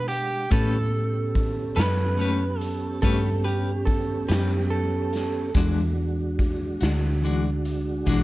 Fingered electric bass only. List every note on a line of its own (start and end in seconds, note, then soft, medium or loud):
0.00 0.48 B2 medium
0.52 1.74 A2 medium
1.77 2.99 F#2 medium
3.03 4.25 G2 medium
4.30 5.52 F#2 medium
5.55 6.78 E2 medium
6.82 8.04 D2 medium
8.07 8.23 B1 medium